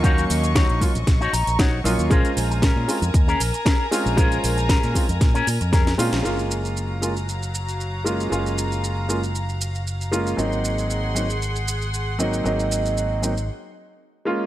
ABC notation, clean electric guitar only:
X:1
M:4/4
L:1/16
Q:"Swing 16ths" 1/4=116
K:Gblyd
V:1 name="Clean electric guitar"
[EGd]2 z2 [EGd]2 z3 [EGd] b2 [EGdg]2 e2 | [DAB]2 z2 [DAB]2 z3 [DAB] z2 [DAB]2 z2 | [DAB]2 z2 [DAB]2 z3 [DAB] z2 [DAB]2 z2 | z16 |
z16 | z16 | z16 |]